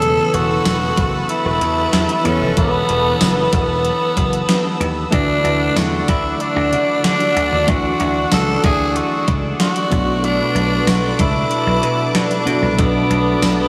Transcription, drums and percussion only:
0.02 closed hi-hat medium
0.34 closed hi-hat medium
0.65 snare loud
0.65 closed hi-hat loud
0.65 tambourine medium
0.97 kick loud
0.97 closed hi-hat medium
1.29 closed hi-hat medium
1.61 closed hi-hat medium
1.93 snare loud
1.93 closed hi-hat loud
1.93 tambourine medium
2.09 closed hi-hat medium
2.25 closed hi-hat medium
2.57 kick loud
2.57 closed hi-hat medium
2.89 closed hi-hat medium
3.21 snare loud
3.21 closed hi-hat loud
3.21 tambourine medium
3.53 kick loud
3.53 closed hi-hat medium
3.85 closed hi-hat medium
4.17 kick medium
4.17 closed hi-hat medium
4.33 closed hi-hat medium
4.49 snare loud
4.49 closed hi-hat loud
4.49 tambourine medium
4.81 closed hi-hat medium
5.12 kick loud
5.12 closed hi-hat medium
5.45 closed hi-hat medium
5.76 snare loud
5.76 closed hi-hat loud
5.76 tambourine medium
6.08 kick loud
6.08 closed hi-hat medium
6.40 closed hi-hat medium
6.73 closed hi-hat medium
7.04 snare loud
7.04 closed hi-hat loud
7.04 tambourine medium
7.20 closed hi-hat medium
7.37 closed hi-hat medium
7.68 kick loud
7.68 closed hi-hat medium
8.00 closed hi-hat medium
8.32 snare loud
8.32 closed hi-hat loud
8.32 tambourine medium
8.64 kick loud
8.64 closed hi-hat medium
8.96 closed hi-hat medium
9.28 kick medium
9.28 closed hi-hat medium
9.60 snare loud
9.60 closed hi-hat loud
9.60 tambourine medium
9.76 closed hi-hat medium
9.92 kick loud
9.92 closed hi-hat medium
10.24 closed hi-hat medium
10.56 closed hi-hat medium
10.87 snare loud
10.87 closed hi-hat loud
10.87 tambourine medium
11.19 kick loud
11.19 closed hi-hat medium
11.51 closed hi-hat medium
11.83 closed hi-hat medium
12.15 snare loud
12.15 closed hi-hat loud
12.15 tambourine medium
12.31 closed hi-hat medium
12.47 closed hi-hat medium
12.79 kick loud
12.79 closed hi-hat medium
13.11 closed hi-hat medium
13.42 snare loud
13.42 closed hi-hat loud
13.42 tambourine medium

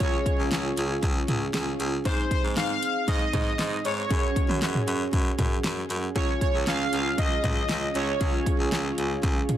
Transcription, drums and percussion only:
0.00 kick loud
0.00 closed hi-hat medium
0.26 kick medium
0.26 closed hi-hat medium
0.51 snare loud
0.51 closed hi-hat medium
0.77 closed hi-hat medium
1.03 kick medium
1.03 closed hi-hat medium
1.28 closed hi-hat medium
1.28 mid tom loud
1.54 snare loud
1.54 closed hi-hat medium
1.80 closed hi-hat medium
2.05 kick loud
2.05 closed hi-hat medium
2.31 kick medium
2.31 closed hi-hat medium
2.57 snare loud
2.57 closed hi-hat medium
2.83 closed hi-hat medium
3.08 kick medium
3.08 closed hi-hat medium
3.33 kick medium
3.33 closed hi-hat medium
3.33 mid tom medium
3.59 snare loud
3.59 closed hi-hat medium
3.85 closed hi-hat medium
4.11 kick loud
4.11 closed hi-hat medium
4.36 kick medium
4.36 closed hi-hat medium
4.49 mid tom loud
4.62 snare loud
4.62 closed hi-hat medium
4.75 mid tom medium
4.88 closed hi-hat medium
5.13 kick medium
5.13 closed hi-hat medium
5.39 kick medium
5.39 closed hi-hat medium
5.39 mid tom medium
5.64 snare loud
5.64 closed hi-hat medium
5.90 closed hi-hat medium
6.16 kick loud
6.16 closed hi-hat medium
6.41 kick medium
6.41 closed hi-hat medium
6.67 snare loud
6.67 closed hi-hat medium
6.93 closed hi-hat medium
7.18 kick medium
7.18 closed hi-hat medium
7.44 kick medium
7.44 closed hi-hat medium
7.44 mid tom loud
7.69 snare loud
7.69 closed hi-hat medium
7.95 closed hi-hat medium
8.21 kick loud
8.21 closed hi-hat medium
8.46 kick medium
8.46 closed hi-hat medium
8.72 snare loud
8.72 closed hi-hat medium
8.98 closed hi-hat medium
9.23 kick medium
9.23 closed hi-hat medium
9.49 closed hi-hat medium
9.49 mid tom medium

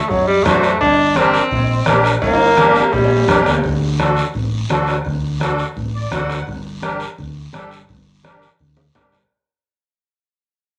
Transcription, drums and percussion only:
0.10 bombo low medium
0.10 cowbell medium
0.10 high conga soft
0.10 long guiro medium
0.46 bombo rim medium
0.46 cowbell medium
0.46 high conga medium
0.46 low conga medium
0.46 short guiro medium
0.63 bombo rim medium
0.63 short guiro medium
0.81 bombo low medium
0.81 cowbell loud
0.81 high conga soft
0.81 long guiro medium
1.15 bombo rim medium
1.15 cowbell medium
1.15 high conga medium
1.15 short guiro medium
1.34 short guiro medium
1.51 bombo low medium
1.51 cowbell medium
1.51 high conga soft
1.51 long guiro medium
1.86 bombo rim medium
1.86 cowbell medium
1.86 high conga medium
1.86 low timbale medium
1.86 short guiro medium
2.04 bombo rim medium
2.04 short guiro medium
2.22 bombo low medium
2.22 cowbell loud
2.22 high conga soft
2.22 high timbale medium
2.22 long guiro medium
2.34 high timbale medium
2.46 high timbale medium
2.57 bombo rim medium
2.57 cowbell medium
2.57 high conga medium
2.57 short guiro medium
2.69 low timbale medium
2.75 short guiro medium
2.81 low timbale medium
2.92 bombo low medium
2.92 cowbell medium
2.92 high conga soft
2.92 low timbale medium
2.92 long guiro medium
3.04 low timbale medium
3.16 low timbale medium
3.28 bombo low medium
3.28 bombo rim medium
3.28 cowbell medium
3.28 high conga medium
3.28 low conga medium
3.28 low timbale medium
3.28 short guiro medium
3.41 low timbale medium
3.46 bombo rim medium
3.46 short guiro medium
3.52 low timbale medium
3.64 bombo low medium
3.64 high conga soft
3.64 long guiro medium
3.99 bombo rim medium
3.99 high conga medium
3.99 short guiro medium
4.17 short guiro medium
4.34 bombo low medium
4.34 high conga soft
4.34 long guiro medium
4.69 bombo rim medium
4.69 high conga medium
4.69 short guiro medium
4.87 bombo rim medium
4.87 short guiro medium
5.05 bombo low medium
5.05 high conga soft
5.05 long guiro medium
5.40 bombo rim medium
5.40 high conga medium
5.40 short guiro medium
5.58 short guiro medium
5.76 bombo low medium
5.76 high conga soft
5.76 long guiro medium
6.11 bombo low medium
6.11 bombo rim medium
6.11 high conga medium
6.11 short guiro medium
6.29 bombo rim medium
6.29 short guiro medium
6.47 bombo low medium
6.47 high conga soft
6.47 long guiro medium
6.82 bombo rim medium
6.82 high conga medium
6.82 short guiro medium
7.00 short guiro medium
7.18 bombo low medium
7.18 high conga soft
7.18 long guiro medium
7.53 bombo rim medium
7.53 high conga medium
7.53 short guiro medium
7.71 short guiro medium
7.89 bombo low medium
7.89 high conga soft
7.89 long guiro medium
8.24 bombo rim medium
8.24 high conga medium
8.24 short guiro medium
8.42 short guiro medium
8.59 bombo low medium
8.59 high conga soft
8.59 long guiro medium
8.77 high conga medium
8.95 bombo low medium
8.95 bombo rim medium
8.95 low conga medium
8.95 short guiro medium
9.12 bombo rim medium
9.12 low conga medium
9.12 short guiro medium

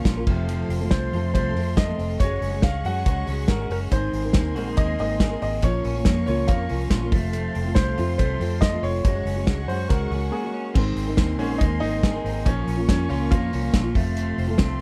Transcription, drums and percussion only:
0.05 kick loud
0.05 snare loud
0.05 hi-hat pedal medium
0.05 ride medium
0.27 kick loud
0.27 crash medium
0.49 hi-hat pedal medium
0.49 ride medium
0.70 open hi-hat medium
0.91 kick loud
0.91 snare loud
0.91 hi-hat pedal medium
0.91 ride medium
1.13 open hi-hat medium
1.35 kick loud
1.35 hi-hat pedal medium
1.35 ride medium
1.56 open hi-hat medium
1.77 kick loud
1.77 snare loud
1.77 hi-hat pedal medium
1.77 ride medium
1.99 open hi-hat medium
2.20 kick loud
2.20 hi-hat pedal medium
2.20 ride medium
2.42 open hi-hat medium
2.62 kick loud
2.62 snare loud
2.62 hi-hat pedal medium
2.62 ride medium
2.85 open hi-hat medium
3.06 kick loud
3.06 hi-hat pedal medium
3.06 ride medium
3.27 open hi-hat medium
3.48 kick loud
3.48 snare loud
3.48 hi-hat pedal medium
3.48 ride medium
3.70 open hi-hat medium
3.91 kick loud
3.91 hi-hat pedal medium
3.91 ride medium
4.13 open hi-hat medium
4.33 kick loud
4.33 snare loud
4.33 hi-hat pedal medium
4.33 ride medium
4.56 open hi-hat medium
4.77 kick loud
4.77 hi-hat pedal medium
4.77 ride medium
4.99 open hi-hat medium
5.20 kick loud
5.20 snare loud
5.20 hi-hat pedal medium
5.20 ride medium
5.42 open hi-hat medium
5.62 kick loud
5.62 hi-hat pedal medium
5.62 ride medium
5.84 open hi-hat medium
6.05 kick loud
6.05 snare loud
6.05 hi-hat pedal medium
6.05 ride medium
6.27 open hi-hat medium
6.48 kick loud
6.48 hi-hat pedal medium
6.48 ride medium
6.69 open hi-hat medium
6.90 kick loud
6.90 snare loud
6.90 hi-hat pedal medium
6.90 ride medium
7.12 kick loud
7.12 open hi-hat medium
7.33 hi-hat pedal medium
7.33 ride medium
7.55 open hi-hat medium
7.75 kick loud
7.75 snare loud
7.75 hi-hat pedal medium
7.75 ride medium
7.98 open hi-hat medium
8.19 kick loud
8.19 hi-hat pedal medium
8.19 ride medium
8.41 open hi-hat medium
8.62 kick loud
8.62 snare loud
8.62 hi-hat pedal medium
8.62 ride medium
8.84 open hi-hat medium
9.05 kick loud
9.05 hi-hat pedal medium
9.05 ride medium
9.27 open hi-hat medium
9.47 kick loud
9.47 snare loud
9.47 hi-hat pedal medium
9.47 ride medium
9.69 open hi-hat medium
9.90 kick loud
9.90 hi-hat pedal medium
9.90 ride medium
10.12 open hi-hat medium
10.75 kick loud
10.75 crash loud
10.96 open hi-hat medium
11.17 kick loud
11.17 snare loud
11.17 hi-hat pedal medium
11.17 ride medium
11.39 open hi-hat medium
11.61 kick loud
11.61 hi-hat pedal medium
11.61 ride medium
11.82 open hi-hat medium
12.03 kick loud
12.03 snare loud
12.03 hi-hat pedal medium
12.03 ride medium
12.26 open hi-hat medium
12.46 kick loud
12.46 hi-hat pedal medium
12.46 ride medium
12.68 open hi-hat medium
12.89 kick loud
12.89 snare loud
12.89 hi-hat pedal medium
12.89 ride medium
13.10 open hi-hat medium
13.31 kick loud
13.31 hi-hat pedal medium
13.31 ride medium
13.53 open hi-hat medium
13.74 kick loud
13.74 snare loud
13.74 hi-hat pedal medium
13.74 ride medium
13.95 kick loud
13.95 open hi-hat medium
14.17 hi-hat pedal medium
14.17 ride medium
14.38 open hi-hat medium
14.58 kick loud
14.58 snare loud
14.58 hi-hat pedal medium
14.58 ride medium

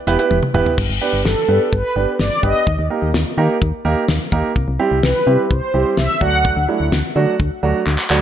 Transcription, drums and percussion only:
0.07 closed hi-hat medium
0.19 closed hi-hat medium
0.31 high tom medium
0.43 mid tom medium
0.55 mid tom loud
0.66 floor tom loud
0.78 kick loud
0.78 crash medium
1.25 snare loud
1.73 kick loud
2.19 snare loud
2.43 kick medium
2.67 kick loud
3.14 snare loud
3.62 kick loud
4.08 snare loud
4.32 kick medium
4.56 kick loud
5.03 snare loud
5.51 kick loud
5.97 snare loud
6.21 kick medium
6.45 kick loud
6.92 snare loud
7.40 kick loud
7.87 clap medium
7.98 clap medium
8.10 clap medium

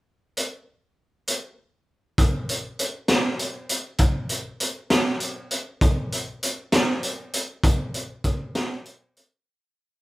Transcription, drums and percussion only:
0.37 closed hi-hat medium
1.28 closed hi-hat medium
2.18 kick loud
2.18 closed hi-hat medium
2.49 closed hi-hat medium
2.79 closed hi-hat medium
3.08 snare loud
3.08 closed hi-hat medium
3.39 closed hi-hat medium
3.69 closed hi-hat medium
3.98 kick loud
3.98 closed hi-hat medium
4.29 closed hi-hat medium
4.60 closed hi-hat medium
4.90 snare loud
4.90 closed hi-hat medium
5.20 closed hi-hat medium
5.51 closed hi-hat medium
5.81 kick loud
5.81 closed hi-hat medium
6.12 closed hi-hat medium
6.43 closed hi-hat medium
6.72 snare loud
6.72 closed hi-hat medium
7.03 closed hi-hat medium
7.33 closed hi-hat medium
7.64 kick loud
7.64 closed hi-hat medium
7.94 closed hi-hat medium
8.24 kick medium
8.24 closed hi-hat medium
8.55 snare loud
8.55 closed hi-hat medium
8.86 closed hi-hat medium
9.17 closed hi-hat medium

